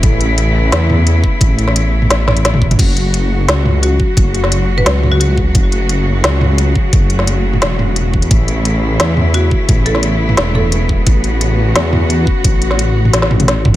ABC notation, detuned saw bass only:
X:1
M:4/4
L:1/8
Q:1/4=174
K:A
V:1 name="Detuned saw bass" clef=bass
A,,,4 E,,3 z | A,,,4 A,,,4 | F,,,4 C,,3 z | F,,,4 C,,4 |
F,,,4 C,,3 z | F,,,4 E,,,4 | A,,,4 E,,3 z | A,,,4 E,,,4 |
A,,,4 E,,3 z | A,,,4 A,,,4 |]